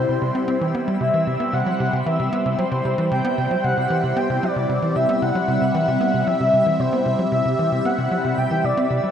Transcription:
0.00 9.11 G3 medium
0.00 9.11 C4 medium
0.00 9.11 E4 medium
0.00 0.71 C5 loud
0.00 0.99 C5 medium
0.00 9.11 E5 medium
0.09 0.19 C3 medium
0.22 0.31 C3 medium
0.35 0.45 C4 medium
0.48 0.58 C4 medium
0.61 0.74 E3 medium
0.75 0.87 B3 medium
0.88 0.97 G3 medium
1.01 1.10 C3 medium
1.01 5.21 C5 medium
1.01 1.55 E5 loud
1.14 1.26 E3 medium
1.27 1.37 C3 medium
1.40 1.53 B3 medium
1.53 1.63 C3 medium
1.53 2.05 F#5 loud
1.66 1.72 F#3 medium
1.80 1.90 C3 medium
1.93 2.03 C3 medium
2.06 2.19 E3 medium
2.06 2.55 E5 loud
2.20 2.29 C3 medium
2.33 2.45 B3 medium
2.46 2.55 C3 medium
2.58 2.64 F#3 medium
2.58 2.95 C5 loud
2.72 2.81 C3 medium
2.85 2.95 C3 medium
2.98 3.11 E3 medium
3.11 3.21 C3 medium
3.11 3.65 G5 loud
3.25 3.37 B3 medium
3.38 3.48 C3 medium
3.51 3.57 F#3 medium
3.64 3.74 C3 medium
3.64 4.18 F#5 loud
3.77 3.87 C3 medium
3.90 4.03 E3 medium
4.04 4.13 C3 medium
4.16 4.29 B3 medium
4.16 4.45 G5 loud
4.30 4.39 C3 medium
4.43 4.49 F#3 medium
4.43 4.97 D5 loud
4.56 4.66 C3 medium
4.69 4.79 C3 medium
4.82 4.95 E3 medium
4.96 5.05 C3 medium
4.96 5.22 E5 loud
5.09 5.21 B3 medium
5.22 5.32 C3 medium
5.22 9.11 E5 medium
5.22 6.29 F#5 loud
5.35 5.41 F#3 medium
5.48 5.58 C3 medium
5.62 5.71 C3 medium
5.75 5.87 E3 medium
5.88 5.98 C3 medium
6.01 6.13 B3 medium
6.14 6.24 C3 medium
6.27 6.33 F#3 medium
6.27 6.81 E5 loud
6.40 6.50 C3 medium
6.53 6.63 C3 medium
6.66 6.79 E3 medium
6.80 6.89 C3 medium
6.80 7.19 C5 medium
6.93 7.05 B3 medium
7.06 7.16 C3 medium
7.19 7.25 F#3 medium
7.32 7.42 C3 medium
7.32 7.87 E5 loud
7.45 7.55 C3 medium
7.59 7.71 E3 medium
7.72 7.82 C3 medium
7.85 7.98 B3 medium
7.85 8.39 F#5 loud
7.98 8.08 C3 medium
8.11 8.17 F#3 medium
8.25 8.34 C3 medium
8.38 8.47 C3 medium
8.38 8.66 G5 loud
8.51 8.63 E3 medium
8.64 8.74 C3 medium
8.64 9.11 D5 loud
8.77 8.87 C4 loud
8.90 9.00 C3 loud
9.04 9.09 G3 medium

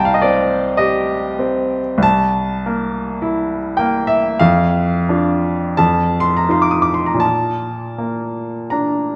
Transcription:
0.00 1.96 C2 medium
0.00 2.06 G5 medium
0.00 2.03 A5 medium
0.00 2.06 A#5 medium
0.05 0.14 F5 medium
0.14 0.23 D#5 medium
0.22 1.13 C4 soft
0.22 0.77 D5 medium
0.77 1.78 G4 medium
0.77 2.03 D#5 medium
1.39 2.03 C4 soft
1.98 4.34 C2 medium
2.03 3.79 A5 medium
2.66 3.57 A#3 soft
3.22 4.15 E4 medium
3.77 4.41 A#3 medium
3.77 4.08 G5 medium
4.07 4.40 E5 medium
4.39 5.74 F2 medium
4.39 5.77 F5 medium
5.09 5.74 D4 soft
5.09 5.74 F4 soft
5.77 7.19 F2 medium
5.77 6.20 A5 medium
6.20 6.38 C6 medium
6.37 6.51 A#5 medium
6.49 7.19 D#4 soft
6.49 7.19 F4 soft
6.49 6.63 C6 medium
6.62 6.72 D6 medium
6.71 6.82 D#6 medium
6.82 6.94 D6 medium
6.94 7.08 C6 medium
7.06 7.22 A#5 soft
7.14 9.16 A#2 soft
7.20 8.71 A5 medium
7.98 9.16 A#3 soft
8.70 9.16 D4 soft
8.70 9.16 A#5 medium

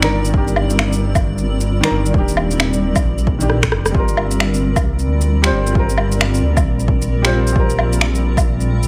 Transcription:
0.00 1.81 G1 loud
0.00 0.28 D#3 medium
0.00 8.88 G3 medium
0.00 8.88 C4 medium
0.00 0.31 D4 medium
0.00 3.95 F4 medium
0.00 8.88 A#4 medium
0.00 0.32 A#4 medium
0.00 8.88 D5 medium
0.00 finger snap loud
0.00 shaker soft
0.25 shaker medium
0.29 1.65 D#3 medium
0.33 1.67 D4 medium
0.33 1.69 G4 medium
0.33 kick loud
0.48 shaker soft
0.56 low woodblock medium
0.70 shaker medium
0.79 finger snap loud
0.79 low woodblock soft
0.93 shaker soft
1.15 kick loud
1.15 low woodblock medium
1.15 shaker medium
1.38 shaker soft
1.61 shaker medium
1.81 2.09 D#3 medium
1.81 2.12 D4 medium
1.81 finger snap loud
1.81 shaker soft
1.85 2.13 A#4 loud
1.91 2.12 G1 loud
2.06 shaker medium
2.10 2.94 D#1 loud
2.10 3.36 D#3 medium
2.10 3.38 D4 medium
2.10 kick loud
2.18 3.40 G4 medium
2.28 shaker soft
2.37 low woodblock medium
2.51 shaker medium
2.60 finger snap loud
2.60 low woodblock soft
2.73 shaker soft
2.96 kick loud
2.96 low woodblock medium
2.96 shaker medium
3.04 3.74 A#1 medium
3.18 shaker soft
3.27 kick loud
3.39 3.54 D#3 medium
3.39 3.55 D4 medium
3.39 3.56 G4 medium
3.39 shaker medium
3.50 cross-stick medium
3.63 finger snap loud
3.63 kick medium
3.63 cross-stick medium
3.63 shaker soft
3.72 3.93 F1 loud
3.72 cross-stick medium
3.86 cross-stick medium
3.86 shaker medium
3.91 4.74 G1 loud
3.91 5.26 G3 medium
3.91 kick loud
3.95 5.28 F4 medium
3.99 5.30 A#4 medium
4.08 shaker soft
4.17 low woodblock medium
4.28 8.88 F4 medium
4.28 shaker medium
4.40 finger snap loud
4.40 low woodblock soft
4.54 shaker soft
4.76 kick loud
4.76 low woodblock medium
4.76 shaker medium
4.84 5.06 C2 loud
4.99 shaker soft
5.07 5.51 D2 medium
5.21 shaker medium
5.42 5.70 G3 medium
5.42 5.73 F4 medium
5.42 finger snap loud
5.42 shaker soft
5.46 5.74 C5 medium
5.52 6.42 G1 medium
5.67 shaker medium
5.71 7.06 G3 medium
5.71 7.08 F4 medium
5.75 7.10 A#4 loud
5.75 kick loud
5.89 shaker soft
5.98 low woodblock medium
6.12 shaker medium
6.21 finger snap loud
6.21 low woodblock soft
6.34 shaker soft
6.43 6.67 D2 medium
6.57 kick loud
6.57 low woodblock medium
6.57 shaker medium
6.65 8.88 A#1 loud
6.80 shaker soft
6.88 kick loud
7.02 shaker medium
7.22 7.50 G3 medium
7.22 7.53 F4 medium
7.22 finger snap loud
7.22 shaker soft
7.26 7.54 C5 loud
7.47 shaker medium
7.52 8.87 G3 medium
7.52 8.88 F4 medium
7.56 8.88 A#4 medium
7.56 kick loud
7.70 shaker soft
7.79 low woodblock medium
7.93 shaker medium
8.01 finger snap loud
8.01 low woodblock soft
8.15 shaker soft
8.37 kick loud
8.37 low woodblock medium
8.37 shaker medium
8.60 shaker soft
8.83 shaker medium

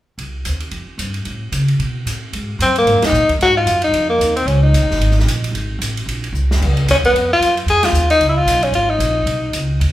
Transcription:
0.18 0.44 C2 medium
0.18 ride soft
0.45 0.71 D#2 medium
0.45 hi-hat pedal medium
0.45 ride medium
0.60 ride soft
0.71 0.86 F2 medium
0.71 ride soft
0.87 muted upright bass stroke soft
0.98 1.24 G2 medium
0.98 hi-hat pedal medium
0.98 ride medium
1.14 ride soft
1.25 1.51 A2 medium
1.25 ride soft
1.52 1.78 C#3 medium
1.52 hi-hat pedal medium
1.52 ride medium
1.68 ride soft
1.79 2.05 B2 medium
1.79 ride soft
2.06 2.32 A2 medium
2.06 hi-hat pedal medium
2.06 ride medium
2.33 2.58 G#2 medium
2.33 ride medium
2.59 2.85 F#2 medium
2.59 2.75 C4 medium
2.59 hi-hat pedal medium
2.59 ride medium
2.76 3.07 A#3 medium
2.76 ride soft
2.85 2.95 G#2 medium
2.85 ride medium
2.95 3.03 F#2 medium
3.02 3.11 D#2 medium
3.02 3.30 D#4 loud
3.02 snare medium
3.02 ride medium
3.12 3.27 A#2 medium
3.12 hi-hat pedal medium
3.29 muted upright bass stroke soft
3.29 kick medium
3.29 ride soft
3.39 3.65 G#2 medium
3.39 3.56 F#4 loud
3.39 ride medium
3.57 3.81 F4 medium
3.66 3.91 F#2 medium
3.66 hi-hat pedal medium
3.66 ride medium
3.82 4.08 D#4 medium
3.82 ride soft
3.91 4.18 F2 medium
3.91 ride medium
4.09 4.34 A#3 medium
4.19 4.45 D#2 medium
4.19 hi-hat pedal medium
4.19 ride medium
4.36 4.49 C4 medium
4.36 ride soft
4.46 4.72 C#2 medium
4.46 4.62 C#4 medium
4.46 ride soft
4.63 5.39 D#4 medium
4.73 4.82 B1 medium
4.73 hi-hat pedal medium
4.73 ride medium
4.82 4.89 G#1 medium
4.90 4.98 F1 medium
4.90 snare soft
4.99 5.24 G#1 medium
4.99 ride medium
5.11 snare soft
5.19 snare soft
5.25 5.51 A#1 medium
5.25 hi-hat pedal soft
5.25 ride medium
5.44 ride soft
5.51 5.78 G#1 medium
5.51 ride medium
5.79 6.05 A1 medium
5.79 hi-hat pedal medium
5.79 ride medium
5.97 ride soft
6.06 6.32 A#1 medium
6.06 ride medium
6.24 ride soft
6.32 6.59 C2 medium
6.32 hi-hat pedal medium
6.51 snare medium
6.61 6.86 C#2 medium
6.61 kick medium
6.61 crash medium
6.77 ride soft
6.86 7.12 D#2 medium
6.86 snare soft
6.86 hi-hat pedal medium
6.86 ride medium
6.91 6.97 C#4 medium
7.04 7.29 B3 medium
7.04 kick medium
7.04 ride soft
7.13 7.39 F2 medium
7.13 ride medium
7.33 7.56 F4 loud
7.40 7.65 F#2 medium
7.40 hi-hat pedal medium
7.40 ride medium
7.57 ride soft
7.66 7.92 F2 medium
7.66 7.86 G#4 loud
7.66 ride medium
7.83 8.10 F4 medium
7.83 snare medium
7.83 ride medium
7.92 8.19 D#2 medium
7.92 hi-hat pedal medium
8.10 8.28 D#4 loud
8.10 ride soft
8.19 8.45 C#2 medium
8.19 ride medium
8.29 8.39 E4 medium
8.37 8.65 F4 medium
8.45 8.71 B1 medium
8.45 hi-hat pedal medium
8.45 ride medium
8.62 8.75 C#4 medium
8.62 ride soft
8.71 8.98 G#1 medium
8.71 8.91 F4 medium
8.71 ride medium
8.90 9.70 D#4 medium
8.99 9.25 A#1 medium
8.99 hi-hat pedal medium
8.99 ride medium
9.26 9.53 B1 medium
9.26 ride medium
9.53 9.80 C#2 medium
9.53 hi-hat pedal medium
9.53 ride medium
9.80 9.92 D#2 medium
9.80 ride medium

